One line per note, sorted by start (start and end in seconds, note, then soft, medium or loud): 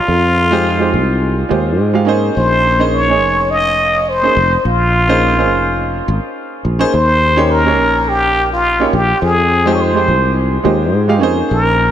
0.00 1.80 F4 loud
0.08 0.95 F2 medium
0.51 0.76 G#3 loud
0.51 0.77 D#4 medium
0.51 0.77 F4 medium
0.51 0.77 G4 medium
0.51 0.77 C5 loud
0.78 1.47 G#3 medium
0.78 1.47 D#4 medium
0.78 1.48 F4 medium
0.78 1.48 G4 medium
0.78 1.49 C5 medium
0.94 1.43 C2 medium
1.49 1.79 D#2 medium
1.49 1.90 G#3 medium
1.49 1.91 D#4 medium
1.49 1.91 F4 medium
1.49 1.91 G4 medium
1.49 1.91 C5 medium
1.79 2.28 G#2 medium
1.93 2.04 G#3 medium
1.93 2.04 D#4 medium
1.93 2.04 F4 medium
1.93 2.05 G4 medium
1.93 2.05 F5 medium
2.05 2.75 A#3 loud
2.05 2.76 C#4 medium
2.05 2.76 D#4 medium
2.05 2.77 G#4 medium
2.05 2.77 C5 loud
2.37 3.22 A#1 medium
2.37 2.96 C5 loud
2.79 3.05 A#3 loud
2.79 3.05 C#4 medium
2.79 3.05 D#4 medium
2.79 3.05 G#4 medium
2.79 3.06 C5 loud
2.94 3.52 C#5 loud
3.08 4.19 A#3 medium
3.08 4.19 C#4 medium
3.08 4.20 D#4 medium
3.08 4.20 G#4 medium
3.08 4.21 C#5 medium
3.22 4.29 F1 medium
3.51 4.10 D#5 loud
4.09 4.65 C5 loud
4.22 4.33 A#3 medium
4.22 4.33 C#4 medium
4.22 4.33 D#4 medium
4.22 4.33 G#4 medium
4.22 4.34 C5 medium
4.37 4.55 F1 medium
4.65 5.51 A#1 medium
4.65 6.33 F4 loud
5.08 5.33 A#3 medium
5.08 5.34 C#4 medium
5.08 5.34 D#4 medium
5.08 5.34 G#4 medium
5.08 5.34 C5 loud
5.36 6.76 A#3 medium
5.36 6.76 C#4 medium
5.36 6.77 D#4 medium
5.36 6.77 G#4 medium
5.36 6.78 C5 medium
5.51 6.00 F1 medium
6.08 6.18 G#1 loud
6.65 6.83 A#1 medium
6.79 6.90 A#3 loud
6.79 6.90 C#4 medium
6.79 6.90 D#4 medium
6.79 6.90 G#4 medium
6.79 6.90 C5 loud
6.93 7.79 D#2 medium
6.93 7.53 C5 loud
7.36 7.62 A#3 medium
7.36 7.62 C#4 medium
7.36 7.62 D#4 medium
7.36 7.62 G4 medium
7.36 7.62 C#5 loud
7.51 8.11 A#4 loud
7.64 8.76 A#3 medium
7.64 8.76 C#4 medium
7.64 8.76 D#4 medium
7.64 8.77 G4 medium
7.64 8.77 C#5 medium
7.79 8.85 A#1 medium
8.09 8.52 G4 loud
8.53 8.96 F4 loud
8.80 8.90 A#3 medium
8.80 8.90 C#4 medium
8.80 8.90 D#4 medium
8.80 8.91 G4 medium
8.80 8.91 C#5 medium
8.93 9.12 A#1 medium
8.93 9.25 G4 loud
9.22 10.09 F2 loud
9.22 9.76 G#4 loud
9.66 9.91 G#3 medium
9.66 9.91 D#4 medium
9.66 9.91 F4 medium
9.66 9.91 G4 medium
9.66 9.91 C5 loud
9.74 9.83 C#5 medium
9.81 10.37 C5 loud
9.93 10.62 G#3 medium
9.93 10.62 D#4 medium
9.93 10.62 F4 medium
9.93 10.63 G4 medium
9.93 10.63 C5 medium
10.08 10.57 C2 medium
10.64 10.94 D#2 medium
10.64 11.05 G#3 medium
10.64 11.05 D#4 medium
10.64 11.05 F4 medium
10.64 11.05 G4 medium
10.64 11.05 C5 medium
10.94 11.22 G#2 loud
11.08 11.18 G#3 medium
11.08 11.19 D#4 medium
11.08 11.19 F4 medium
11.08 11.19 G4 medium
11.08 11.19 F5 medium
11.20 11.41 F2 medium
11.20 11.90 A#3 medium
11.20 11.91 C#4 medium
11.20 11.91 D#4 medium
11.20 11.91 G#4 medium
11.20 11.91 C5 loud
11.51 11.91 A#1 medium
11.51 11.91 A#4 loud